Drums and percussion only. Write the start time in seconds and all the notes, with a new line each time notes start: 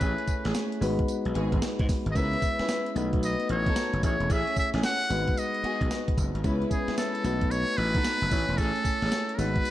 0.01 kick, closed hi-hat, tambourine
0.18 closed hi-hat
0.27 kick, closed hi-hat, tambourine
0.45 snare, closed hi-hat
0.54 snare, closed hi-hat, tambourine
0.72 closed hi-hat
0.82 open hi-hat, tambourine
0.99 kick, closed hi-hat
1.08 closed hi-hat, tambourine
1.25 closed hi-hat
1.35 closed hi-hat
1.52 kick, closed hi-hat
1.62 snare, closed hi-hat, tambourine
1.79 kick, closed hi-hat
1.89 kick, snare, open hi-hat, tambourine
2.06 closed hi-hat
2.15 kick, closed hi-hat, tambourine
2.33 closed hi-hat
2.42 kick, closed hi-hat, tambourine
2.59 snare, closed hi-hat
2.69 snare, closed hi-hat, tambourine
2.86 closed hi-hat
2.96 closed hi-hat, tambourine
3.13 kick, closed hi-hat
3.23 closed hi-hat, tambourine
3.40 closed hi-hat
3.49 closed hi-hat
3.66 kick, closed hi-hat
3.76 snare, closed hi-hat, tambourine
3.93 closed hi-hat
4.03 kick, closed hi-hat, tambourine
4.20 closed hi-hat
4.30 kick, closed hi-hat, tambourine
4.47 closed hi-hat
4.56 kick, closed hi-hat, tambourine
4.74 snare, closed hi-hat
4.83 snare, closed hi-hat, tambourine
5.01 closed hi-hat
5.10 closed hi-hat, tambourine
5.28 kick, closed hi-hat
5.37 closed hi-hat, tambourine
5.54 closed hi-hat
5.64 closed hi-hat
5.81 kick, closed hi-hat
5.91 snare, closed hi-hat, tambourine
6.08 kick, closed hi-hat
6.18 kick, closed hi-hat, tambourine
6.35 closed hi-hat
6.44 kick, closed hi-hat, tambourine
6.62 closed hi-hat
6.71 kick, closed hi-hat, tambourine
6.88 snare, closed hi-hat
6.98 snare, closed hi-hat, tambourine
7.15 closed hi-hat
7.24 closed hi-hat, tambourine
7.41 kick, closed hi-hat
7.51 closed hi-hat, tambourine
7.68 closed hi-hat
7.78 closed hi-hat
7.95 kick, closed hi-hat
8.04 snare, closed hi-hat, tambourine
8.22 closed hi-hat
8.31 kick, closed hi-hat, tambourine
8.48 closed hi-hat
8.58 kick, closed hi-hat, tambourine
8.76 closed hi-hat
8.85 kick, closed hi-hat, tambourine
9.02 snare, closed hi-hat
9.12 snare, closed hi-hat, tambourine
9.29 closed hi-hat
9.39 open hi-hat, tambourine
9.56 kick, closed hi-hat
9.65 closed hi-hat, tambourine